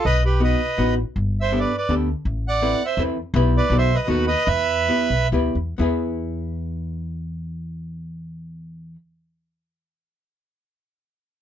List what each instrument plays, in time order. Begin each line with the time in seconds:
0.05 upright bass B1, accordion B4 D#5
0.25 accordion G4 B4
0.40 hollow-body jazz guitar B3 D#4 F#4 B4, accordion B4 D#5
0.78 upright bass A1, hollow-body jazz guitar B3 D#4 F#4 B4
1.16 upright bass G1
1.41 accordion C5 E5
1.52 hollow-body jazz guitar B3 D4 G4 A4
1.59 accordion B4 D5
1.77 accordion B4 D5
1.89 upright bass D2, hollow-body jazz guitar B3 D4 G4 A4
2.25 upright bass A1
2.48 accordion D5 F#5
2.62 hollow-body jazz guitar C4 E4 A4 B4
2.85 accordion C5 E5
2.97 upright bass E2, hollow-body jazz guitar C4 E4 A4 B4
3.34 upright bass B1, hollow-body jazz guitar B3 E4 G4 B4
3.57 accordion B4 D5
3.70 upright bass B1, hollow-body jazz guitar B3 D#4 F#4 A4
3.78 accordion C5 E5
3.95 accordion B4 D#5
4.07 upright bass D#2, hollow-body jazz guitar B3 D#4 F#4 A4, accordion F#4 B4
4.27 accordion B4 D#5
4.45 upright bass E2, accordion B4 E5
4.89 hollow-body jazz guitar B3 E4 G4 B4
5.10 upright bass B1
5.32 upright bass D2, hollow-body jazz guitar B3 E4 G4 B4
5.55 upright bass E2
5.78 upright bass E2, hollow-body jazz guitar B3 E4 G#4
5.82 hollow-body jazz guitar B4